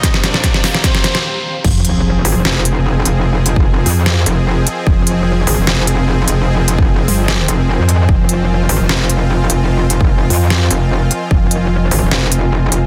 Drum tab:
CC |----------------|x---------------|----------------|----------------|
HH |x-x-x-o-x-x-----|--x---o---x---x-|--x---o---x---x-|--x---o---x---x-|
SD |oooooooooooo----|--------o-------|--------o-------|--------o-------|
BD |o---o---o-------|o---------------|---o------------|o---------------|

CC |----------------|----------------|----------------|----------------|
HH |--x---o---x---x-|--x---o---x---x-|--x---o---x---x-|--x---o---x---x-|
SD |--------o-------|--------o-------|--------o-------|--------o-------|
BD |---o------------|o---------------|---o------------|o---------------|